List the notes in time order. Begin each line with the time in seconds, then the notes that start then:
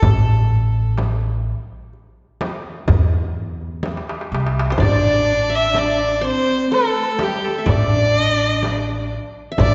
Already playing: A4
0.02 A1, darbuka dum, frame drum
0.98 darbuka tek, frame drum
1.93 darbuka ka
2.41 darbuka tek, frame drum
2.88 E2, frame drum, darbuka dum
3.61 darbuka ka
3.83 darbuka tek, frame drum
3.97 darbuka ka
4.09 darbuka tek
4.21 darbuka ka
4.32 C2, darbuka tek
4.46 darbuka ka
4.59 darbuka tek
4.70 C5, darbuka ka
4.78 A1 D4 D5, frame drum
4.82 D5, darbuka dum
5.29 darbuka ka
5.50 E5
5.55 E5
5.75 D4 D5, darbuka tek, frame drum
6.21 C4 C5
6.26 C5
6.48 darbuka ka
6.72 A3 A4
7.18 G3 G4, darbuka tek, frame drum
7.44 A3 A4
7.58 E5
7.66 A1 D4 D5, frame drum, darbuka dum
8.17 D#5, darbuka ka
8.34 D5
8.40 darbuka ka
8.48 D#5
8.62 D5, darbuka tek, frame drum
9.12 darbuka ka
9.52 E5
9.58 A1 D4 D5, frame drum, darbuka dum